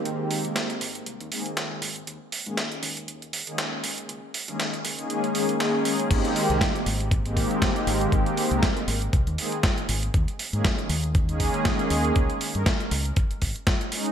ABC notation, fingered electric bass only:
X:1
M:4/4
L:1/16
Q:"Swing 16ths" 1/4=119
K:Ab
V:1 name="Fingered electric bass" clef=bass
A,,, z2 C,, z2 A,,, z C,, E,, z4 A,,, z | E,, z2 A,, z2 E,,4- E,, z3 E,, z | D,, z2 G,, z2 D,, z3 A,,, z4 z | A,,, z2 C,, z2 A,,,4- A,,, z3 A,,, z |
A,,, z2 C,, z2 A,,, z C,, E,, z4 A,,, z | E,, z2 A,, z2 E,,4- E,, z3 E,, z | D,, z2 G,, z2 D,, z3 A,,, z4 z |]